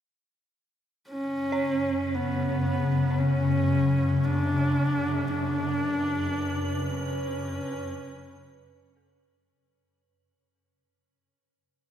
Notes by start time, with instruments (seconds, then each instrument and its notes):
1.09 synth drone F#2 C#3, horsehead fiddle C#4
1.52 synth bell C#5
2.15 horsehead fiddle B3
3.19 horsehead fiddle C#4
4.25 horsehead fiddle D4
5.30 horsehead fiddle D4, ambient pad B4
6.90 horsehead fiddle C#4
8.97 synth bell A4